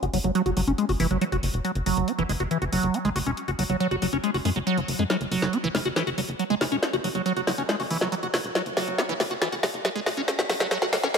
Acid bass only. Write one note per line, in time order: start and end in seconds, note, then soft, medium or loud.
0.03 0.06 F#4 medium
0.14 0.18 F#3 medium
0.24 0.31 F#3 medium
0.35 0.42 F#3 loud
0.46 0.51 F#4 medium
0.57 0.61 F#3 medium
0.68 0.72 C#4 medium
0.78 0.85 G#3 medium
0.89 0.92 F#4 medium
1.00 1.07 E3 loud
1.11 1.18 F#3 medium
1.21 1.24 F#3 loud
1.32 1.37 F#4 medium
1.65 1.72 F#3 medium
1.86 2.09 F#3 medium
2.08 2.12 C#4 medium
2.19 2.23 E3 loud
2.29 2.32 G#3 medium
2.40 2.43 F#4 medium
2.51 2.58 E3 medium
2.62 2.65 F#4 medium
2.72 2.96 F#3 medium
2.94 2.99 C#4 medium
3.05 3.10 G#3 loud
3.16 3.19 F#4 medium
3.26 3.31 C#4 medium
3.48 3.51 F#4 medium
3.59 3.64 F#3 medium
3.70 3.77 F#3 medium
3.80 3.87 F#3 loud
3.91 3.96 F#4 medium
4.02 4.07 F#3 medium
4.13 4.18 C#4 medium
4.24 4.31 G#3 medium
4.34 4.37 F#4 medium
4.45 4.50 G#3 medium
4.56 4.59 F#3 medium
4.67 4.79 F#3 loud
4.78 4.80 E3 loud
4.99 5.04 G#3 medium
5.10 5.17 F#3 medium
5.32 5.55 F#3 medium
5.53 5.58 C#4 medium
5.64 5.69 E3 loud
5.75 5.78 G#3 medium
5.85 5.88 F#4 medium
5.96 6.03 E3 medium
6.07 6.10 F#4 medium
6.18 6.21 F#3 medium
6.39 6.44 F#3 medium
6.50 6.55 G#3 loud
6.61 6.64 F#4 medium
6.72 6.76 C#4 medium
6.93 6.96 F#4 medium
7.04 7.09 F#3 medium
7.15 7.22 F#3 medium
7.26 7.33 F#3 loud
7.37 7.41 F#4 medium
7.47 7.52 F#3 medium
7.58 7.63 C#4 medium
7.69 7.76 G#3 medium
7.80 7.83 F#4 medium
7.91 7.98 E3 loud
8.01 8.08 F#3 medium
8.12 8.15 F#3 loud
8.23 8.28 F#4 medium
8.55 8.62 F#3 medium
8.77 9.00 F#3 medium
8.98 9.03 C#4 medium
9.09 9.14 E3 loud
9.20 9.23 G#3 medium
9.31 9.34 F#4 medium
9.42 9.49 E3 medium
9.52 9.55 F#4 medium
9.63 9.66 F#3 medium
9.85 9.89 F#3 medium
9.96 10.00 G#3 loud
10.06 10.09 F#4 medium
10.17 10.22 C#4 medium
10.39 10.42 F#4 medium
10.50 10.54 F#3 medium
10.60 10.67 F#3 medium
10.71 10.78 F#3 loud
10.82 10.87 F#4 medium
10.93 10.97 F#3 medium
11.03 11.08 C#4 medium
11.14 11.18 G#3 medium